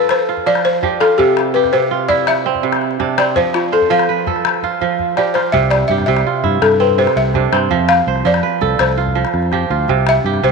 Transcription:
Already playing: kora F3 D4 A4 B4 C5, balafon B4
0.09 balafon C5, calabash click
0.19 calabash click
0.29 kora F4
0.37 calabash thump
0.46 kora F3, balafon D5, calabash click
0.55 calabash click
0.64 balafon C5, calabash click
0.73 calabash click
0.83 kora F3 G4, calabash thump, calabash click
1.00 kora F4, balafon A4, calabash click
1.18 kora C3, balafon G4, calabash thump
1.37 calabash click
1.54 kora G4, balafon B4
1.64 calabash thump, calabash click
1.73 kora C3, balafon C5, calabash click
1.91 kora F4
2.09 kora E4, balafon D5, calabash thump
2.27 balafon E5, calabash click
2.37 calabash click
2.46 kora C4
2.55 calabash thump
2.63 kora C3, calabash click
2.73 calabash click
2.82 calabash click
2.91 calabash click
3.00 kora C3 D4, calabash thump, calabash click
3.18 kora C4, balafon D5, calabash click
3.36 kora F3, balafon C5, calabash thump
3.54 balafon F4, calabash click
3.72 balafon A4, kora C5
3.82 calabash thump
3.90 kora F3, balafon F5
3.99 calabash click
4.09 kora B4
4.27 kora A4, calabash thump
4.36 calabash click
4.45 calabash click
4.54 calabash click
4.63 kora F4, calabash thump
4.81 kora F3, calabash thump
4.99 calabash thump
5.17 kora F3 G4, balafon D5, calabash click
5.34 kora F4, balafon C5, calabash click
5.52 fingered electric bass C2, kora C3, balafon E5, calabash thump
5.71 balafon D5, calabash click
5.88 fingered electric bass G2, kora G4, balafon E5
5.98 calabash thump, calabash click
6.06 fingered electric bass C2, kora C3, balafon E5, calabash click
6.17 calabash click
6.27 kora F4
6.44 fingered electric bass G2, kora E4, calabash thump
6.62 fingered electric bass G2, balafon A4, calabash click
6.71 calabash click
6.80 kora C4, balafon B4
6.89 calabash thump
6.98 kora C3, balafon C5
7.07 calabash click
7.16 fingered electric bass C2, balafon E5, calabash click
7.25 calabash click
7.34 kora C3 D4, calabash thump, calabash click
7.52 fingered electric bass G2, kora C4, calabash click
7.71 fingered electric bass F2, kora F3, calabash thump
7.89 balafon F5, calabash click
8.07 fingered electric bass C2, kora C5
8.16 calabash click
8.25 fingered electric bass F2, kora F3, balafon D5, calabash click
8.34 calabash click
8.43 kora B4
8.61 fingered electric bass C2, kora A4, calabash thump
8.79 fingered electric bass C2, balafon C5, calabash click
8.88 calabash click
8.98 kora F4
9.06 calabash thump
9.15 kora F3
9.25 calabash click
9.34 fingered electric bass F2, calabash click
9.43 calabash click
9.52 kora F3 G4, calabash thump, calabash click
9.70 fingered electric bass D2, kora F4
9.88 fingered electric bass C2, kora C3, calabash thump
10.07 balafon E5, calabash click
10.24 fingered electric bass G2, kora G4
10.34 calabash thump, calabash click
10.42 fingered electric bass C2, kora C3, balafon C5, calabash click

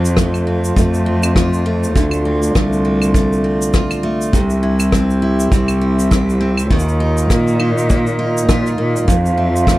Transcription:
Already playing: cello F2, steel-string acoustic guitar F2 C4 F4, harmonium F4 C5 A5
0.05 shaker
0.17 steel-string acoustic guitar A3, kick, cross-stick, shaker
0.34 claves, shaker
0.47 steel-string acoustic guitar C4
0.64 shaker
0.76 cello F2, steel-string acoustic guitar A3, kick, shaker
0.94 shaker
1.06 steel-string acoustic guitar C4
1.23 claves, shaker
1.36 steel-string acoustic guitar F4, kick, cross-stick, shaker
1.53 shaker
1.66 steel-string acoustic guitar A3
1.83 shaker
1.95 cello D2, steel-string acoustic guitar D3, harmonium D5 C6, kick, shaker
2.11 claves, shaker
2.25 steel-string acoustic guitar C4
2.42 shaker
2.55 cello C2, steel-string acoustic guitar A3, kick, cross-stick, shaker
2.73 shaker
2.85 steel-string acoustic guitar C4
3.02 claves, shaker
3.14 steel-string acoustic guitar A3, kick, shaker
3.33 shaker
3.44 steel-string acoustic guitar C4
3.61 shaker
3.73 steel-string acoustic guitar F4, kick, cross-stick, shaker
3.90 cross-stick, claves, shaker
4.03 steel-string acoustic guitar A3
4.21 shaker
4.33 cello C2, steel-string acoustic guitar C3, harmonium G4 E5, kick, shaker
4.50 shaker
4.63 steel-string acoustic guitar E4
4.79 claves, shaker
4.92 steel-string acoustic guitar C4, kick, cross-stick, shaker
5.10 shaker
5.22 steel-string acoustic guitar E4
5.39 shaker
5.52 cello C2, steel-string acoustic guitar C4, kick, shaker
5.68 claves, shaker
5.81 steel-string acoustic guitar E4
5.99 shaker
6.11 steel-string acoustic guitar G4, kick, cross-stick, shaker
6.29 shaker
6.41 steel-string acoustic guitar C4
6.57 claves, shaker
6.70 cello D#2, steel-string acoustic guitar D#3, harmonium F4 D#5 A#5, kick
6.79 shaker
6.88 shaker
7.00 steel-string acoustic guitar D#4
7.17 shaker
7.30 cello A#2, steel-string acoustic guitar A#3, kick, cross-stick, shaker
7.47 shaker
7.60 steel-string acoustic guitar D#4, claves
7.78 shaker
7.90 steel-string acoustic guitar A#3, kick, shaker
8.07 shaker
8.19 steel-string acoustic guitar D#4
8.37 shaker
8.49 cello A#2, steel-string acoustic guitar F4, kick, cross-stick, shaker
8.66 cross-stick, shaker
8.78 cello A#2, steel-string acoustic guitar A#3
8.96 shaker
9.08 steel-string acoustic guitar F2, cello F2, harmonium C5 A5, vibraphone F5, kick, shaker
9.24 vibraphone F5, shaker
9.37 steel-string acoustic guitar C4, vibraphone E5
9.54 vibraphone C6, shaker
9.67 steel-string acoustic guitar A3, vibraphone F5, kick, cross-stick, shaker

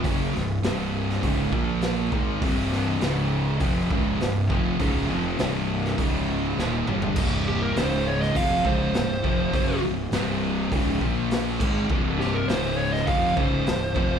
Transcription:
0.04 fingered electric bass F#1, distorted electric guitar F#2 C#3 F#3, kick, open hi-hat
0.34 fingered electric bass C1, distorted electric guitar C2 G2, snare
0.63 fingered electric bass C1, distorted electric guitar C2 G2 C3, snare, open hi-hat
1.10 snare
1.23 fingered electric bass C#1, distorted electric guitar C#2 G#2 C#3, kick, open hi-hat
1.52 fingered electric bass A#1, distorted electric guitar A#2 F3 A#3, kick
1.82 snare, open hi-hat
2.12 fingered electric bass G#1, distorted electric guitar G#2 D#3 G#3, kick
2.42 fingered electric bass C1, distorted electric guitar C2 G2 C3, kick, open hi-hat
2.73 snare
3.00 fingered electric bass C#1, distorted electric guitar C#2 G#2 C#3, snare, open hi-hat
3.60 fingered electric bass F1, distorted electric guitar F2 C3 F3, kick, open hi-hat
3.91 fingered electric bass C#1, distorted electric guitar C#2 G#2 C#3, kick
4.20 fingered electric bass C1, distorted electric guitar C2 G2, snare, open hi-hat
4.50 fingered electric bass F1, distorted electric guitar F2 C3 F3, kick
4.80 fingered electric bass C#1, distorted electric guitar C#2 G#2 C#3, kick, open hi-hat
5.09 fingered electric bass F1, distorted electric guitar F2 C3 F3
5.39 fingered electric bass C1, distorted electric guitar C2 G2 C3, snare, open hi-hat
5.85 snare
5.98 fingered electric bass C#1, distorted electric guitar C#2 G#2 C#3, kick, open hi-hat
6.57 fingered electric bass D#1, distorted electric guitar D#2 A#2 D#3, snare
6.87 fingered electric bass G1, distorted electric guitar G2 D3 G3, mid tom
7.02 floor tom
7.16 fingered electric bass C1, distorted electric guitar C2 G2 C3, kick, crash
7.48 lead electric guitar G4
7.62 lead electric guitar A#4
7.76 fingered electric bass C#1, distorted electric guitar C#2 G#2 C#3, lead electric guitar C5, snare, open hi-hat
8.08 lead electric guitar C#5
8.21 lead electric guitar D#5, snare
8.35 fingered electric bass F1, distorted electric guitar F2 C3 F3, lead electric guitar F5, kick, open hi-hat
8.65 fingered electric bass C#1, distorted electric guitar C#2 G#2 C#3, lead electric guitar C5, kick
8.94 fingered electric bass C1, distorted electric guitar C2 G2, snare, open hi-hat
9.24 fingered electric bass F1, distorted electric guitar F2 C3 F3, kick
9.54 fingered electric bass F#1, distorted electric guitar F#2 C#3 F#3, kick, open hi-hat
9.83 fingered electric bass C1, distorted electric guitar C2 G2
10.12 fingered electric bass C1, distorted electric guitar C2 G2 C3, snare, open hi-hat
10.72 fingered electric bass C#1, distorted electric guitar C#2 G#2 C#3, kick, open hi-hat
11.01 fingered electric bass A#1, distorted electric guitar A#2 F3 A#3, kick
11.31 snare, open hi-hat
11.60 fingered electric bass G#1, distorted electric guitar G#2 D#3 G#3, kick, crash
11.90 fingered electric bass C1, distorted electric guitar C2 G2 C3, kick
12.19 lead electric guitar G4, snare
12.35 lead electric guitar A#4
12.47 fingered electric bass C#1, distorted electric guitar C#2 G#2 C#3, lead electric guitar C5, snare, open hi-hat
12.77 lead electric guitar C#5
12.93 lead electric guitar D#5, snare
13.06 fingered electric bass F1, distorted electric guitar F2 C3 F3, lead electric guitar F5, kick, open hi-hat
13.36 fingered electric bass C#1, distorted electric guitar C#2 G#2 C#3, lead electric guitar C5, kick
13.67 fingered electric bass C1, distorted electric guitar C2 G2, snare, open hi-hat
13.96 fingered electric bass F1, distorted electric guitar F2 C3 F3, kick

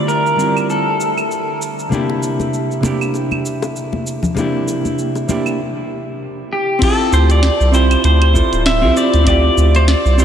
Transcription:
Already playing: hollow-body jazz guitar D3 A3 C4 E4 F4 G4, pedal steel guitar D5
0.08 pedal steel guitar A#4, shaker
0.26 shaker
0.36 hollow-body jazz guitar D3 G3 C4 E4, shaker
0.40 hollow-body jazz guitar F4 G4
0.57 claves, shaker
0.70 pedal steel guitar A4, shaker
1.01 shaker
1.18 claves, shaker
1.31 shaker
1.62 shaker
1.79 shaker
1.89 hollow-body jazz guitar C3 A#3 D4, high conga, shaker
1.93 hollow-body jazz guitar E4 G4
2.10 high bongo
2.23 shaker
2.40 high bongo, high conga, shaker
2.54 shaker
2.71 shaker
2.81 hollow-body jazz guitar C3 A#3 D4, high bongo, high conga
2.85 hollow-body jazz guitar E4 G4, shaker
3.01 claves, shaker
3.14 high bongo, shaker
3.31 high conga, claves
3.46 shaker
3.62 high bongo, shaker
3.76 shaker
3.93 high bongo, high conga
4.07 shaker
4.23 low conga, shaker
4.34 hollow-body jazz guitar C3 A#3 D4, high bongo, high conga, shaker
4.39 hollow-body jazz guitar E4 G4
4.68 high bongo, shaker
4.85 high conga, shaker
4.99 shaker
5.15 high bongo, shaker
5.28 hollow-body jazz guitar C3 A#3 D4 E4 G4, high conga, shaker
5.46 high bongo, claves, shaker
6.53 pedal steel guitar G4
6.79 hollow-body jazz guitar C4 E4 F4, kick, closed hi-hat, crash, shaker
6.83 hollow-body jazz guitar G4, pedal steel guitar A4
7.12 analog synth bass D2, pedal steel guitar C5, shaker
7.30 pedal steel guitar D5, closed hi-hat, shaker
7.43 snare, closed hi-hat, shaker
7.60 analog synth bass C2, shaker
7.72 hollow-body jazz guitar C4 E4 F4 G4, pedal steel guitar C5, shaker
7.91 closed hi-hat, claves, shaker
8.04 analog synth bass D2, pedal steel guitar C5, closed hi-hat, shaker
8.22 closed hi-hat, claves
8.33 hollow-body jazz guitar C4 E4 F4 A4, kick, shaker
8.52 analog synth bass D1, closed hi-hat, shaker
8.66 pedal steel guitar E5, snare, closed hi-hat, shaker
8.81 analog synth bass C2, hollow-body jazz guitar C4 E4 F4 G4
8.97 pedal steel guitar D5, shaker
9.14 analog synth bass D2, closed hi-hat, shaker
9.24 hollow-body jazz guitar C4 E4 F4, pedal steel guitar D5, kick, closed hi-hat, shaker
9.29 hollow-body jazz guitar G4
9.57 analog synth bass D2, shaker
9.75 pedal steel guitar C5, closed hi-hat, shaker
9.88 pedal steel guitar D5, snare, closed hi-hat, shaker
10.05 analog synth bass C2, shaker
10.17 hollow-body jazz guitar C4 E4 F4 G4, pedal steel guitar C5, shaker

